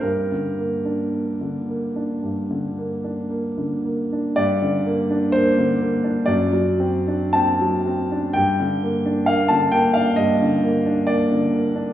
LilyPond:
<<
  \new Staff \with { instrumentName = "Grand piano" } { \time 4/4 \key g \minor \tempo 4 = 62 bes'2.~ bes'8 r8 | d''4 c''4 d''4 a''4 | g''4 f''16 a''16 g''16 f''16 ees''4 d''4 | }
  \new Staff \with { instrumentName = "Grand piano" } { \time 4/4 \key g \minor g,16 d16 bes16 d'16 bes16 d16 bes16 d'16 g,16 d16 bes16 d'16 bes16 d16 bes16 d'16 | g,16 d16 bes16 d'16 bes16 d16 bes16 d'16 fis,16 fis16 c'16 d'16 c'16 fis16 c'16 d'16 | g,16 d16 bes16 d'16 bes16 d16 bes16 d'16 g,16 d16 bes16 d'16 bes16 d16 bes16 d'16 | }
>>